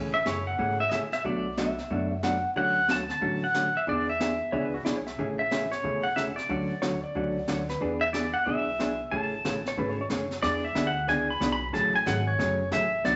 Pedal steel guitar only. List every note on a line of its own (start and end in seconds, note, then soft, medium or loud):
0.14 0.26 E5 medium
0.26 0.47 C#5 medium
0.47 0.78 F#5 medium
0.80 0.89 E5 medium
0.89 0.92 D#5 medium
0.89 0.98 E5 medium
1.13 1.25 E5 loud
1.26 1.56 D5 medium
2.57 2.87 F#5 medium
2.91 3.09 A5 medium
3.11 3.43 A5 loud
3.44 3.77 F#5 medium
3.77 3.82 E5 medium
3.89 4.09 D5 medium
4.09 4.70 E5 medium
5.39 5.70 E5 medium
5.72 6.06 C#5 medium
6.03 6.16 F#5 medium
6.16 6.22 E5 medium
6.36 6.82 D5 medium
8.01 8.06 E5 medium
8.13 8.35 D5 medium
8.34 8.45 F#5 medium
8.45 9.14 E5 medium
9.11 10.06 A5 medium
10.43 10.65 D5 medium
10.65 10.87 E5 medium
10.87 11.08 F#5 medium
11.09 11.30 G#5 loud
11.30 11.51 B5 loud
11.52 11.73 B5 loud
11.74 11.95 A5 medium
11.96 12.07 G#5 loud
12.07 12.28 F#5 medium
12.27 12.69 C#5 medium
12.73 13.03 E5 medium
13.05 13.16 D5 loud